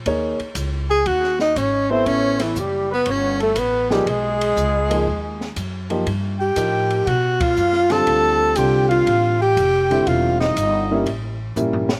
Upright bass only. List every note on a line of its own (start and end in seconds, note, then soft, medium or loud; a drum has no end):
0.06 0.37 D#2 medium
0.40 muted upright bass stroke soft
0.55 1.04 C#2 medium
1.06 1.54 D#2 medium
1.56 2.04 G#1 medium
2.06 2.54 A1 medium
2.56 3.04 F#1 medium
3.07 3.55 G1 medium
3.56 4.04 A1 medium
4.06 4.55 B1 medium
4.56 5.05 C#2 medium
5.07 5.55 D#2 medium
5.56 6.05 F#2 medium
6.07 6.55 G2 medium
6.56 7.05 A2 medium
7.07 7.55 B2 medium
7.57 8.05 F#2 medium
8.07 8.55 D2 medium
8.56 9.05 C2 medium
9.06 9.55 A1 medium
9.57 10.05 F1 medium
10.07 10.55 E1 medium
10.56 11.05 G1 medium
11.06 11.54 A1 medium
11.56 12.00 A#1 medium